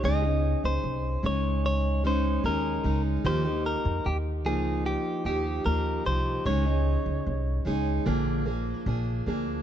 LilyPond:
<<
  \new Staff \with { instrumentName = "Clean electric guitar" } { \time 4/4 \key ees \mixolydian \tempo 4 = 75 ees''8. c''8. des''8 des''8 c''8 bes'8. r16 | c''8 bes'8 g'8 aes'8 g'8 g'8 bes'8 c''8 | des''2. r4 | }
  \new Staff \with { instrumentName = "Steel-string acoustic guitar" } { \time 4/4 \key ees \mixolydian <des aes des' ees' aes'>16 <des' ees' aes'>4~ <des' ees' aes'>16 <aes des' ees' aes'>4 <aes des' ees' aes'>8 <aes des' ees' aes'>8 <aes des' ees' aes'>8 | <ees f bes ees' g'>16 <bes ees' g'>4~ <bes ees' g'>16 <f bes ees'>4 <f bes ees' g'>8 <f bes ees' g'>8 <f bes ees' g'>8 | <des aes des' ees' aes'>16 <des' ees' aes'>4~ <des' ees' aes'>16 <aes des' ees' aes'>8 <bes, d f bes d' aes'>8 <f bes d' aes'>8 <f bes d' aes'>8 <f bes d' aes'>8 | }
  \new Staff \with { instrumentName = "Upright bass" } { \clef bass \time 4/4 \key ees \mixolydian des,8. des,16 c,8 des,4. ees,8 des,8 | ees,8. f,16 ees,8 des,8. r16 ees,8 ees,8 c,8 | des,8. des,16 c,8 des,8 bes,,4 bes,,8 d,8 | }
>>